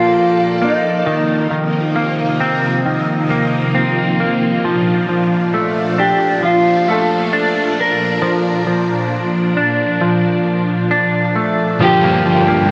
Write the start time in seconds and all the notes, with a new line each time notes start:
Already playing: A#2 F3 A#3 D4 F4 A4 D5
0.62 A#3 D#4
1.06 C3 D#3 A#3 D#4
1.51 D#3
1.96 A#3
2.40 C4
2.86 D#3
3.30 A#3
3.75 C4
4.20 A#3
4.64 A#2 F3 D4
5.09 F3
5.54 A3
5.98 D4 G4
6.43 F3 F4
6.88 A3 A4
7.33 D4
7.80 A#4
8.22 F3
8.67 F3
9.57 D4
10.01 F3
10.91 D4
11.36 A3
11.79 G2 A#2 D3 F3 G3 A#3 D4 G4
11.84 G4
12.04 A#3
12.25 F3
12.48 A#3